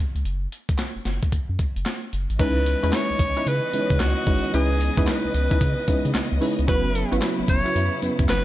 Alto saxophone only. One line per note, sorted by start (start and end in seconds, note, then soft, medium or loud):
2.41 2.96 B4 loud
2.94 3.49 C#5 loud
3.48 4.02 B4 loud
4.01 4.54 F#4 loud
4.54 5.04 G#4 loud
5.08 6.38 B4 medium
6.69 7.18 B4 loud
7.49 7.99 C#5 loud
8.30 8.44 B4 loud